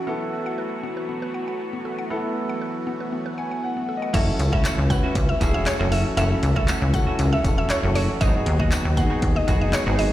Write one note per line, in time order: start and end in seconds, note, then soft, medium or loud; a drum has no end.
0.00 4.10 E3 medium
0.00 4.10 F#3 medium
0.00 4.10 A3 medium
0.00 4.10 F#4 medium
0.07 2.06 B3 medium
0.07 4.10 B3 medium
0.07 0.19 B3 medium
0.07 2.07 E4 medium
0.07 2.07 A4 medium
0.46 0.57 F#5 loud
0.58 0.70 B4 medium
0.83 0.96 B3 medium
0.97 1.08 B4 medium
1.09 1.21 B3 medium
1.22 1.33 B4 medium
1.34 1.46 F#5 medium
1.48 1.59 F#5 medium
1.73 1.84 B3 medium
1.85 1.97 A4 medium
1.99 2.09 F#5 loud
2.10 4.10 B3 medium
2.10 2.23 B3 medium
2.10 4.10 E4 medium
2.10 4.10 A4 medium
2.49 2.60 F#5 loud
2.62 2.74 B4 medium
2.87 2.99 B3 medium
3.00 3.11 B4 medium
3.12 3.25 B3 medium
3.26 3.37 B4 medium
3.38 3.50 F#5 medium
3.38 3.61 G#5 medium
3.51 3.62 F#5 medium
3.63 3.95 F#5 medium
3.77 3.87 B3 medium
3.89 4.01 A4 medium
3.97 4.13 D#5 medium
4.02 4.13 F#5 loud
4.13 4.31 F#1 loud
4.13 4.34 E3 medium
4.13 8.17 E3 medium
4.13 10.13 F#3 medium
4.13 8.17 A3 medium
4.13 4.27 A3 medium
4.13 8.17 C#4 medium
4.13 4.76 C#4 medium
4.13 4.26 C#4 medium
4.13 4.76 E4 medium
4.13 10.13 F#4 medium
4.13 4.76 F#4 medium
4.13 4.26 F#4 loud
4.13 4.77 A4 medium
4.13 4.35 E5 loud
4.13 kick loud
4.13 closed hi-hat medium
4.13 crash loud
4.13 tambourine medium
4.27 muted clean electric guitar stroke soft
4.39 4.66 C#2 medium
4.39 muted clean electric guitar stroke soft
4.39 closed hi-hat medium
4.39 tambourine soft
4.52 4.63 E3 medium
4.52 4.64 A3 medium
4.52 4.64 C#4 medium
4.52 4.65 F#4 medium
4.52 4.63 E5 medium
4.52 kick medium
4.64 4.85 E3 medium
4.64 4.78 A3 medium
4.64 4.77 C#4 medium
4.64 4.77 F#4 medium
4.64 clap loud
4.64 closed hi-hat medium
4.64 tambourine medium
4.78 5.04 C#2 medium
4.78 muted clean electric guitar stroke soft
4.90 5.32 C#4 medium
4.90 5.32 E4 medium
4.90 5.32 F#4 medium
4.90 5.32 B4 medium
4.90 5.11 F#5 medium
4.90 muted clean electric guitar stroke soft
4.90 kick medium
4.90 closed hi-hat medium
4.90 tambourine soft
5.03 5.14 E3 medium
5.03 5.15 A3 medium
5.03 5.15 C#4 medium
5.03 5.15 F#4 medium
5.15 5.33 C#2 loud
5.15 muted clean electric guitar stroke soft
5.15 kick loud
5.15 closed hi-hat loud
5.15 tambourine soft
5.29 5.39 E5 medium
5.29 muted clean electric guitar stroke soft
5.41 5.67 E1 medium
5.41 5.54 E3 medium
5.41 5.54 A3 medium
5.41 5.72 C#4 medium
5.41 5.53 C#4 loud
5.41 5.72 E4 medium
5.41 5.72 F#4 medium
5.41 5.53 F#4 medium
5.41 5.72 G#4 medium
5.41 kick medium
5.41 closed hi-hat medium
5.41 tambourine soft
5.54 5.65 E3 medium
5.54 5.65 A3 medium
5.54 5.66 C#4 medium
5.54 5.66 F#4 medium
5.54 5.64 E5 medium
5.66 5.77 C#5 medium
5.66 muted clean electric guitar stroke soft
5.66 clap loud
5.66 closed hi-hat medium
5.66 tambourine medium
5.79 6.05 F#1 loud
5.79 5.90 E3 medium
5.79 5.91 A3 medium
5.79 6.11 C#4 medium
5.79 5.91 C#4 medium
5.79 6.11 E4 medium
5.79 5.92 F#4 medium
5.79 6.11 F#4 medium
5.79 6.11 A4 medium
5.91 6.09 E3 medium
5.91 6.05 A3 medium
5.91 6.04 C#4 medium
5.91 6.04 F#4 medium
5.91 6.03 E5 medium
5.91 open hi-hat medium
5.91 tambourine soft
6.05 muted clean electric guitar stroke medium
6.17 6.35 F#1 loud
6.17 6.38 E3 medium
6.17 6.30 A3 loud
6.17 6.80 C#4 medium
6.17 6.30 C#4 medium
6.17 6.80 E4 medium
6.17 6.80 F#4 medium
6.17 6.29 F#4 loud
6.17 6.80 A4 medium
6.17 6.38 E5 loud
6.17 closed hi-hat loud
6.17 tambourine medium
6.30 muted clean electric guitar stroke soft
6.42 6.69 C#2 medium
6.42 muted clean electric guitar stroke soft
6.42 closed hi-hat medium
6.42 tambourine soft
6.56 6.67 E3 medium
6.56 6.67 A3 medium
6.56 6.68 C#4 medium
6.56 6.68 F#4 medium
6.56 6.66 E5 medium
6.56 kick medium
6.68 6.89 E3 medium
6.68 6.81 A3 medium
6.68 6.81 C#4 loud
6.68 6.80 F#4 medium
6.68 clap loud
6.68 closed hi-hat medium
6.68 tambourine medium
6.81 7.07 C#2 loud
6.81 muted clean electric guitar stroke soft
6.93 7.35 C#4 medium
6.93 7.35 E4 medium
6.93 7.35 F#4 medium
6.93 7.36 A4 medium
6.93 7.14 F#5 medium
6.93 muted clean electric guitar stroke medium
6.93 kick medium
6.93 closed hi-hat medium
6.93 tambourine soft
7.07 7.18 E3 medium
7.07 7.18 A3 medium
7.07 7.18 C#4 medium
7.07 7.19 F#4 medium
7.19 7.36 C#2 loud
7.19 muted clean electric guitar stroke soft
7.19 closed hi-hat medium
7.19 tambourine soft
7.32 7.42 E5 medium
7.32 muted clean electric guitar stroke soft
7.44 7.71 E1 medium
7.44 7.76 C#4 medium
7.44 7.76 E4 medium
7.44 7.76 F#4 medium
7.44 7.76 A4 medium
7.44 kick medium
7.44 closed hi-hat medium
7.44 tambourine soft
7.58 7.68 E5 medium
7.58 muted clean electric guitar stroke soft
7.70 7.81 C#5 medium
7.70 muted clean electric guitar stroke soft
7.70 clap loud
7.70 closed hi-hat medium
7.70 tambourine medium
7.83 8.09 F#1 medium
7.83 8.14 C#4 medium
7.83 8.14 E4 medium
7.83 8.14 F#4 medium
7.83 8.14 A4 medium
7.83 muted clean electric guitar stroke soft
7.95 8.16 E3 medium
7.95 8.09 A3 medium
7.95 8.08 C#4 medium
7.95 8.07 F#4 loud
7.95 8.06 C#5 medium
7.95 open hi-hat medium
7.95 tambourine soft
8.09 muted clean electric guitar stroke soft
8.20 8.38 G#1 loud
8.20 10.13 D#3 medium
8.20 8.41 F#3 medium
8.20 10.13 G#3 medium
8.20 8.83 B3 medium
8.20 10.13 B3 medium
8.20 8.34 B3 medium
8.20 8.83 D#4 medium
8.20 8.33 D#4 loud
8.20 8.83 F#4 medium
8.20 8.33 F#4 loud
8.20 8.83 G#4 medium
8.20 8.42 D#5 loud
8.20 kick loud
8.20 closed hi-hat medium
8.20 tambourine medium
8.34 muted clean electric guitar stroke medium
8.46 8.73 D#2 medium
8.46 muted clean electric guitar stroke soft
8.46 closed hi-hat medium
8.59 8.70 F#3 medium
8.59 8.71 B3 medium
8.59 8.71 D#4 medium
8.59 8.72 F#4 medium
8.59 8.70 D#5 medium
8.59 kick loud
8.71 8.92 F#3 medium
8.71 8.85 B3 medium
8.71 8.84 D#4 medium
8.71 8.84 F#4 medium
8.71 clap loud
8.71 closed hi-hat medium
8.71 tambourine medium
8.85 9.10 D#2 medium
8.85 muted clean electric guitar stroke soft
8.97 9.39 B3 medium
8.97 9.39 D#4 medium
8.97 9.39 F#4 medium
8.97 9.39 G#4 medium
8.97 9.18 F#5 medium
8.97 muted clean electric guitar stroke soft
8.97 kick medium
8.97 closed hi-hat medium
8.97 tambourine soft
9.10 9.21 F#3 medium
9.10 9.22 B3 medium
9.10 9.22 D#4 medium
9.10 9.22 F#4 medium
9.22 9.40 D#2 loud
9.22 kick loud
9.22 closed hi-hat loud
9.36 9.46 D#5 medium
9.36 muted clean electric guitar stroke medium
9.47 9.74 F#1 loud
9.47 9.61 F#3 medium
9.47 9.79 B3 medium
9.47 9.61 B3 loud
9.47 9.79 D#4 medium
9.47 9.60 D#4 medium
9.47 9.79 F#4 medium
9.47 9.60 F#4 loud
9.47 9.79 G#4 medium
9.47 kick medium
9.47 closed hi-hat medium
9.47 tambourine soft
9.61 9.72 F#3 medium
9.61 9.72 B3 medium
9.61 9.73 D#4 medium
9.61 9.73 F#4 medium
9.61 9.71 D#5 medium
9.73 9.84 C#5 medium
9.73 muted clean electric guitar stroke soft
9.73 clap loud
9.73 closed hi-hat loud
9.73 tambourine medium
9.86 10.12 G#1 medium
9.86 9.97 F#3 medium
9.86 10.13 B3 medium
9.86 9.98 B3 medium
9.86 10.13 D#4 medium
9.86 9.98 D#4 medium
9.86 9.99 F#4 medium
9.86 10.13 F#4 medium
9.86 10.13 G#4 medium
9.98 10.13 F#3 medium
9.98 10.12 B3 medium
9.98 10.11 D#4 medium
9.98 10.11 F#4 medium
9.98 10.10 D#5 medium
9.98 open hi-hat medium
9.98 tambourine soft